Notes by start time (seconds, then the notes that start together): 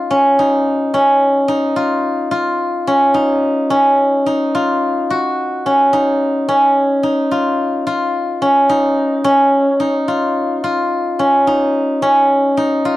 Already playing: C#4 D#4 F4
0.10 C#4
0.39 D#4
0.94 C#4
1.48 D#4
1.76 F4
2.31 F4
2.87 C#4
3.14 D#4
3.70 C#4
4.26 D#4
4.55 F4
5.10 F#4
5.66 C#4
5.93 D#4
6.48 C#4
7.03 D#4
7.31 F4
7.87 F4
8.42 C#4
8.69 D#4
9.24 C#4
9.80 D#4
10.08 F4
10.64 F4
11.19 C#4
11.47 D#4
12.02 C#4
12.57 D#4
12.85 F4